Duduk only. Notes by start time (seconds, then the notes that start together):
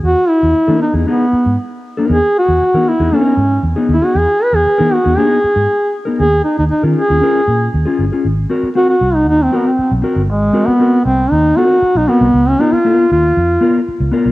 0.04 F#4
0.29 E4
0.82 D#4
1.08 B3
2.11 G#4
2.39 F#4
2.89 E4
3.15 C#4
3.93 E4
4.05 F#4
4.18 G#4
4.43 B4
4.55 G#4
4.94 F#4
5.18 G#4
6.19 G#4
6.44 D#4
6.58 D#4
6.71 D#4
6.96 G#4
8.77 F#4
8.89 F#4
9.15 D#4
9.29 D#4
9.43 C4
9.55 B3
9.67 C4
10.30 G#3
10.67 B3
11.05 C4
11.31 D#4
11.57 F#4
11.98 D#4
12.09 B3
12.48 C#4
12.61 D#4
12.74 F4
13.12 F4